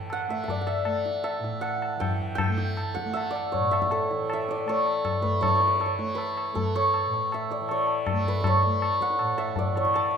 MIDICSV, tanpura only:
0, 0, Header, 1, 2, 480
1, 0, Start_track
1, 0, Tempo, 381679
1, 1079, Time_signature, 4, 2, 24, 8
1, 6832, Tempo, 375469
1, 12892, End_track
2, 0, Start_track
2, 0, Title_t, "Tanpura"
2, 0, Program_c, 0, 104
2, 0, Note_on_c, 0, 45, 54
2, 0, Note_on_c, 0, 52, 53
2, 0, Note_on_c, 0, 57, 59
2, 353, Note_off_c, 0, 57, 0
2, 353, Note_on_c, 0, 57, 54
2, 1068, Note_off_c, 0, 57, 0
2, 1068, Note_on_c, 0, 57, 58
2, 1753, Note_off_c, 0, 45, 0
2, 1758, Note_on_c, 0, 45, 62
2, 2469, Note_off_c, 0, 52, 0
2, 2474, Note_on_c, 0, 52, 59
2, 3124, Note_off_c, 0, 57, 0
2, 3124, Note_on_c, 0, 57, 61
2, 3826, Note_off_c, 0, 57, 0
2, 3826, Note_on_c, 0, 57, 63
2, 4504, Note_off_c, 0, 45, 0
2, 4509, Note_on_c, 0, 45, 58
2, 5174, Note_off_c, 0, 52, 0
2, 5179, Note_on_c, 0, 52, 56
2, 5853, Note_off_c, 0, 57, 0
2, 5853, Note_on_c, 0, 57, 55
2, 6547, Note_off_c, 0, 57, 0
2, 6547, Note_on_c, 0, 57, 56
2, 6839, Note_off_c, 0, 52, 0
2, 6839, Note_on_c, 0, 52, 57
2, 7533, Note_off_c, 0, 57, 0
2, 7533, Note_on_c, 0, 57, 59
2, 8232, Note_off_c, 0, 57, 0
2, 8232, Note_on_c, 0, 57, 62
2, 8915, Note_off_c, 0, 45, 0
2, 8920, Note_on_c, 0, 45, 59
2, 9613, Note_off_c, 0, 52, 0
2, 9613, Note_on_c, 0, 52, 63
2, 10266, Note_off_c, 0, 57, 0
2, 10266, Note_on_c, 0, 57, 58
2, 10951, Note_off_c, 0, 57, 0
2, 10951, Note_on_c, 0, 57, 55
2, 11645, Note_off_c, 0, 45, 0
2, 11650, Note_on_c, 0, 45, 61
2, 12310, Note_off_c, 0, 52, 0
2, 12315, Note_on_c, 0, 52, 61
2, 12892, Note_off_c, 0, 45, 0
2, 12892, Note_off_c, 0, 52, 0
2, 12892, Note_off_c, 0, 57, 0
2, 12892, End_track
0, 0, End_of_file